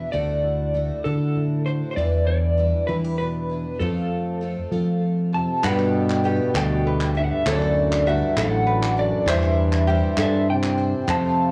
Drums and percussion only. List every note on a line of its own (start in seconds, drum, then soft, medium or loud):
5.64 clap loud
5.79 clap soft
6.10 clap medium
6.55 clap loud
7.01 clap medium
7.46 clap loud
7.62 clap soft
7.92 clap medium
8.37 clap loud
8.83 clap medium
9.28 clap loud
9.43 clap soft
9.73 clap medium
10.18 clap loud
10.63 clap medium
11.08 clap loud